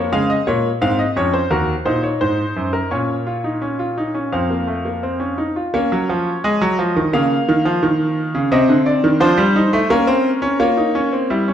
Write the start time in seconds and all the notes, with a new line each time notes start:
Already playing: A#3 C#5
0.12 C#3 G#3 F5
0.30 D#5
0.47 A#2 A#3 C#5
0.81 G#2 C4 F5
0.99 D#5
1.16 F2 C#4 C#5
1.33 C5
1.50 D#2 F#4 A#4
1.85 A#2 D#4 C5
2.03 C#5
2.21 G#2 C5
2.56 F#2
2.73 A#4
2.91 A#2 C#4 C#5
3.27 F4
3.44 D#4
3.62 C#4
3.79 F4
3.98 D#4
4.14 C#4
4.32 F2 C4 F5
4.50 A#3
4.67 A3
4.85 A#3
5.03 C4
5.20 C#4
5.38 D#4
5.56 F4
5.74 A#3 C#4 C#5
5.92 F#3
6.09 F3
6.44 G#3 D#5
6.61 F#3
6.79 F3
6.96 D#3
7.13 C#3 A#3 F5
7.49 D#3
7.65 F3
7.83 D#3
8.35 C#3
8.52 C3 C4 D#5
8.69 D3
8.86 D5
9.04 D#3
9.20 F3 D4 C5
9.37 G3
9.56 D#4
9.73 A3
9.90 A#3 C#4 A#4
10.07 C4
10.42 C#4
10.59 A#3 F4 C#5
10.77 D#4
10.95 C#4
11.13 C4
11.30 G3 E4
11.48 C#4